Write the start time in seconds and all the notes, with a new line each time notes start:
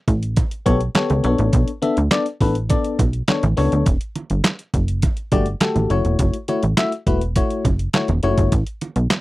0.08 A1, kick, closed hi-hat
0.23 closed hi-hat
0.36 kick, closed hi-hat, muted conga
0.51 closed hi-hat
0.66 B1 B3 G4 A4 C#5, kick, closed hi-hat, low conga
0.81 closed hi-hat
0.95 B3 G4 A4 C#5, snare, clap, closed hi-hat, high conga
1.10 C#2, closed hi-hat, high conga
1.24 B1 B3 D4 A4 C#5, closed hi-hat
1.38 A1, closed hi-hat
1.53 B1, kick, closed hi-hat, muted conga
1.68 closed hi-hat
1.82 B3 D4 A4 E5, closed hi-hat, muted conga
1.97 D2, closed hi-hat
2.11 B3 D4 A4 D5, snare, clap, closed hi-hat, high conga
2.26 closed hi-hat
2.41 A1 B3 D4 A4 B4, kick, open hi-hat
2.55 closed hi-hat
2.69 B3 D4 A4 D5, kick, closed hi-hat, muted conga
2.84 closed hi-hat
2.99 B1, kick, closed hi-hat, low conga
3.13 closed hi-hat
3.28 B3 D4 A4 C#5, snare, clap, closed hi-hat, high conga
3.43 A1, closed hi-hat, high conga
3.57 C#2 B3 D4 A4 C#5, open hi-hat
3.72 D2, closed hi-hat
3.86 E1, kick, closed hi-hat, muted conga
4.01 closed hi-hat
4.16 closed hi-hat, muted conga
4.30 G1, closed hi-hat
4.44 snare, clap, closed hi-hat, high conga
4.59 closed hi-hat
4.74 F#1, kick, closed hi-hat
4.88 closed hi-hat
5.02 kick, closed hi-hat, muted conga
5.17 closed hi-hat
5.32 G1 A3 F#4 G4 D5, kick, closed hi-hat, low conga
5.46 closed hi-hat
5.61 A3 F#4 G4 A4, snare, clap, closed hi-hat, high conga
5.75 A1, closed hi-hat, high conga
5.90 F#1 A3 E4 F#4 C#5, closed hi-hat
6.05 E1, closed hi-hat
6.19 F#1, kick, closed hi-hat
6.34 closed hi-hat
6.48 A3 E4 F#4 C#5, closed hi-hat, muted conga
6.63 A1, closed hi-hat
6.77 A3 E4 F#4 E5, snare, clap, closed hi-hat, high conga
6.92 closed hi-hat
7.07 E1 A3 E4 F#4 B4, kick, closed hi-hat
7.21 closed hi-hat
7.36 A3 E4 F#4 C#5, kick, closed hi-hat, muted conga
7.50 closed hi-hat
7.65 F#1, kick, closed hi-hat, low conga
7.79 closed hi-hat
7.93 A3 E4 F#4 C#5, snare, clap, closed hi-hat, high conga
8.08 E1, closed hi-hat, high conga
8.23 F#1 A3 E4 F#4 C#5, closed hi-hat
8.38 G1, kick, closed hi-hat
8.52 A1, kick, closed hi-hat
8.67 closed hi-hat
8.81 closed hi-hat, muted conga
8.96 B1, closed hi-hat
9.10 snare, clap, closed hi-hat, high conga